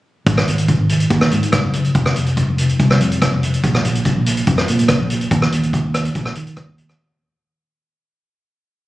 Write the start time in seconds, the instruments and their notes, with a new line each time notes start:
0.26 fingered electric bass G#1, kick, closed hi-hat
0.38 cross-stick
0.48 fingered electric bass G#1, closed hi-hat
0.58 closed hi-hat
0.68 kick, closed hi-hat
0.80 fingered electric bass G#1
0.89 closed hi-hat
1.00 closed hi-hat
1.10 fingered electric bass D#2, kick, closed hi-hat
1.21 cross-stick
1.31 fingered electric bass G#2, closed hi-hat
1.43 closed hi-hat
1.52 kick, cross-stick, closed hi-hat
1.64 fingered electric bass F#1
1.73 closed hi-hat
1.84 closed hi-hat
1.95 fingered electric bass F1, kick, closed hi-hat
2.06 cross-stick
2.16 fingered electric bass F1, closed hi-hat
2.26 closed hi-hat
2.37 kick, closed hi-hat
2.48 fingered electric bass F1
2.58 closed hi-hat
2.69 closed hi-hat
2.79 fingered electric bass C2, kick, closed hi-hat
2.91 cross-stick
3.01 fingered electric bass F2, closed hi-hat
3.12 closed hi-hat
3.22 kick, cross-stick, closed hi-hat
3.32 fingered electric bass F1
3.43 closed hi-hat
3.54 closed hi-hat
3.63 fingered electric bass A#1, kick, closed hi-hat
3.75 cross-stick
3.85 fingered electric bass A#1, closed hi-hat
3.95 closed hi-hat
4.05 kick, closed hi-hat
4.16 fingered electric bass A#1
4.26 closed hi-hat
4.37 closed hi-hat
4.47 fingered electric bass F2, kick, closed hi-hat
4.58 cross-stick
4.68 fingered electric bass A#2, closed hi-hat
4.79 closed hi-hat
4.88 kick, cross-stick, closed hi-hat
5.01 fingered electric bass A#1
5.10 closed hi-hat
5.21 closed hi-hat
5.31 fingered electric bass D#2, kick, closed hi-hat
5.42 cross-stick
5.52 fingered electric bass D#2, closed hi-hat
5.63 closed hi-hat
5.73 kick, closed hi-hat
5.84 fingered electric bass D#2
5.94 cross-stick, closed hi-hat
6.05 closed hi-hat
6.15 fingered electric bass A#1, kick, closed hi-hat
6.25 cross-stick
6.35 fingered electric bass D#3, closed hi-hat
6.47 closed hi-hat
6.57 kick, cross-stick, closed hi-hat
6.68 fingered electric bass D#2
6.78 closed hi-hat
6.89 cross-stick, closed hi-hat